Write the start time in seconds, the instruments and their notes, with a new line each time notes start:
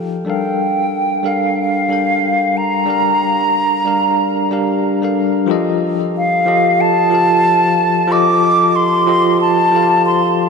Already playing: tine electric piano F3 D#4 G4 A4 F5 G5
0.25 tine electric piano G3 D4 A4 A#4
0.30 tine electric piano F5, flute G5
1.23 tine electric piano G3 D4 A4 A#4 F5
1.28 flute F5
1.60 flute F5
1.88 tine electric piano G3 D4 A4 A#4
1.93 tine electric piano G5
2.57 flute A#5
2.86 tine electric piano G3 D4 G4 A#4
2.90 tine electric piano F5
3.85 tine electric piano G3 D4 G4 A#4 F5
4.51 tine electric piano G3 D4 G4 A#4 F5
5.02 tine electric piano G3 D4 A4 A#4 F5
5.46 tine electric piano F3 F4 G4 A4
5.51 tine electric piano D#5
6.17 flute F5
6.46 tine electric piano F3 F4 G4 A4 D#5
6.81 flute A5
7.10 tine electric piano F3 F4 G4 A4
7.15 tine electric piano F5
8.07 tine electric piano F3 F4 G4 A4
8.12 tine electric piano D#5, flute D6
8.76 flute C6
9.07 tine electric piano F3 F4 G4 A4 D#5
9.41 flute A5
9.71 tine electric piano F3 F4 G4 A4
9.76 tine electric piano F5
10.06 flute C6